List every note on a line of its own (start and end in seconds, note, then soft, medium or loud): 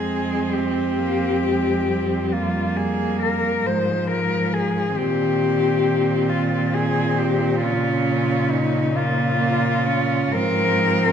0.00 3.62 F2 soft
0.00 1.00 G#3 soft
0.00 2.34 C4 soft
0.00 0.54 G#4 medium
0.53 2.34 G4 soft
0.99 1.43 A#3 soft
1.44 1.89 G#3 soft
1.88 3.68 G3 soft
2.32 3.68 A#3 soft
2.32 2.78 F4 soft
2.76 3.21 G#4 soft
3.22 3.68 A#4 medium
3.66 4.99 G#2 soft
3.66 4.96 F3 soft
3.66 4.96 G#3 soft
3.66 4.10 C5 medium
4.10 4.55 A#4 medium
4.54 4.98 G#4 soft
4.96 10.32 A#2 soft
4.96 7.64 D#3 soft
4.96 7.63 C4 soft
4.96 6.30 G4 medium
6.29 6.75 F4 soft
6.74 7.19 G#4 medium
7.18 7.62 G4 soft
7.61 10.35 C#3 soft
7.61 8.92 C#4 soft
7.61 8.52 F4 soft
8.50 8.97 D#4 medium
8.93 9.38 A#3 soft
8.93 10.34 F4 medium
9.40 9.88 A#3 soft
9.86 10.35 C#4 soft
10.33 11.12 G#2 soft
10.33 11.12 F3 soft
10.33 11.12 C4 soft
10.33 11.12 A#4 medium